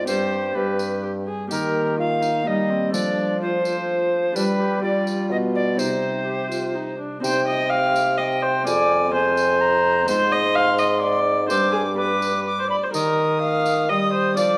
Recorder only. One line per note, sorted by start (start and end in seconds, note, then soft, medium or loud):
0.07 0.56 C5 medium
0.55 1.03 B4 medium
1.51 1.95 A#4 medium
1.99 2.49 F5 medium
2.47 2.93 D#5 medium
2.94 3.40 D5 medium
3.42 4.36 C5 medium
4.35 4.82 B4 medium
4.83 5.30 D5 medium
5.31 5.37 D#5 medium
5.55 5.80 D5 medium
5.79 6.99 C5 medium
7.24 8.15 G5 medium
8.19 8.68 G5 medium
8.67 9.14 G#5 medium
9.14 9.62 G#5 medium
9.61 10.08 A#5 medium
10.09 11.19 C6 medium
11.51 11.97 D6 medium
11.98 12.41 D6 medium
12.46 12.69 D6 medium
12.70 12.76 B5 medium
12.95 13.86 D#6 medium
13.90 14.39 D#6 medium
14.38 14.58 D6 medium